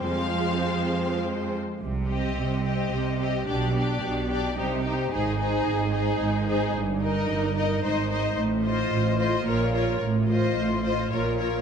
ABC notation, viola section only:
X:1
M:3/4
L:1/8
Q:1/4=110
K:Fm
V:1 name="Viola section"
[F,A,]4- [F,A,] z | [K:Cm] z C2 C2 C | D D2 D E E | E E2 E2 E |
z E2 E E E | [K:Fphr] z F2 F F F | z F2 F F F |]